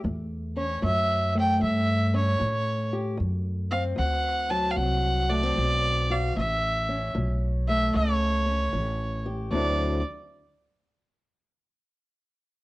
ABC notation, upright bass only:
X:1
M:4/4
L:1/8
Q:"Swing" 1/4=76
K:Ador
V:1 name="Upright bass" clef=bass
E,,2 F,,2 G,,2 A,,2 | F,,2 D,,2 C,,2 B,,,2 | A,,,2 B,,,2 ^C,,2 A,,,2 | D,, z6 z |]